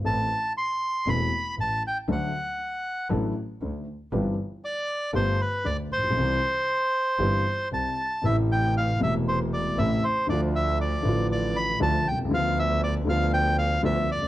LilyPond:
<<
  \new Staff \with { instrumentName = "Bandoneon" } { \time 4/4 \key c \major \tempo 4 = 118 a''4 c'''4 b''4 a''8 g''8 | fis''2 r2 | r4 d''4 c''8 b'8 d''8 c''8~ | c''2. a''4 |
\key a \minor e''8 g''8 f''8 e''8 c''8 d''8 e''8 c''8 | d''8 e''8 d''4 d''8 b''8 a''8 g''8 | f''8 e''8 d''8 f''8 g''8 f''8 e''8 d''8 | }
  \new Staff \with { instrumentName = "Grand piano" } { \clef bass \time 4/4 \key c \major <a,, a, e a c' a'>8 r4. <e,, e, e a c' a'>8 r8 <a,, a,>8 r8 | <d, d fis a d' a'>8 r4. <a,, a, fis a d' a'>8 r8 <d, d>8 r8 | <g,, g, e g c' g'>8 r4. <g,, g, d a b g'>8 r8 <d, d>8 r32 a,,32 bes,,32 b,,32 | <c, c e g c' g'>8 r4. <g,, g, e g c' g'>8 r8 <c, c>8 r8 |
\key a \minor <a,, a, c e a e'>4. <e,, e, c e a e'>4. <a,, a, c e a e'>8 r8 | <d, d f a f'>4. <a,, a, d f a f'>4. <d, d f a f'>8 r32 b,,32 c,32 cis,32 | <d, d f b f'>4. <d, d f b f'>4. <d, d f b f'>8 r32 cis,32 d,32 r32 | }
  \new Staff \with { instrumentName = "Double bass" } { \clef bass \time 4/4 \key c \major a,,8 r4. e,,8 r8 a,,8 r8 | d,8 r4. a,,8 r8 d,8 r8 | g,,8 r4. g,,8 r8 d,8 bes,,8 | c,8 r4. g,,8 r8 c,8 r8 |
\key a \minor a,,4. e,,4. a,,8 r8 | d,4. a,,4. d,8 c,8 | d,4. d,4. d,8 d,8 | }
>>